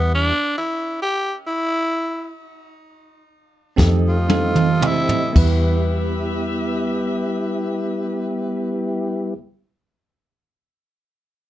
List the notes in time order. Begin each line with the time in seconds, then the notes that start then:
Already playing: E2 G3 B3 E4 G4 B4 E5
0.15 D4
0.58 E4
1.02 G4
1.47 E4
3.76 F2 F3 A3 C4 D#4 G4 A4 D#5, kick, snare
4.08 F4
4.28 C4 D#4 G4 A4, high tom
4.56 mid tom
4.81 C4 G4 C5 D#5, mid tom
4.86 E4
5.09 floor tom
5.33 E2 G3 B3 E4 G4 B4 E5, kick, crash
5.38 B4